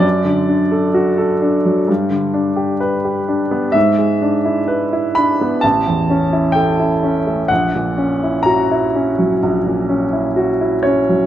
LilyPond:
\new Staff \with { instrumentName = "Grand piano" } { \time 4/4 \key fis \phrygian \tempo 4 = 64 << { d''2. r4 | e''4. b''8 a''4 g''4 | fis''4 ais''2~ ais''8 cis''8 | } \\ { fis,16 d16 d'16 a'16 fis'16 a'16 d'16 fis16 g,16 d16 d'16 g'16 b'16 g'16 d'16 b16 | gis,16 gis16 d'16 e'16 b'16 e'16 d'16 b16 a,,16 e,16 cis'16 e'16 a'16 e'16 cis'16 a16 | ais,,16 ais,16 cis'16 e'16 fis'16 e'16 cis'16 fis16 ais,,16 ais,16 cis'16 e'16 fis'16 e'16 cis'16 fis16 | } >> }